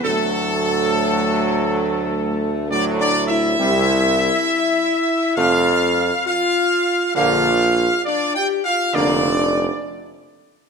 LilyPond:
<<
  \new Staff \with { instrumentName = "Trumpet section" } { \time 4/4 \key d \dorian \tempo 4 = 67 a'2. \tuplet 3/2 { d''8 d''8 e''8~ } | e''2 f''4 f''4 | f''4 \tuplet 3/2 { d''8 g''8 f''8 } d''4 r4 | }
  \new Staff \with { instrumentName = "French horn section" } { \time 4/4 \key d \dorian a2. \tuplet 3/2 { d'8 d'8 e'8~ } | e'2 f'4 f'4 | f'4 \tuplet 3/2 { d'8 g'8 f'8 } d'4 r4 | }
  \new Staff \with { instrumentName = "Trombone section" } { \clef bass \time 4/4 \key d \dorian <a, fis>2. <a, fis>4 | <c g>8 r4. <c a>8 r4. | <d bes>8 r4. <d bes>8 r4. | }
  \new Staff \with { instrumentName = "Tuba" } { \clef bass \time 4/4 \key d \dorian d,1 | c,4 r4 f,4 r4 | bes,,4 r4 f,,4 r4 | }
>>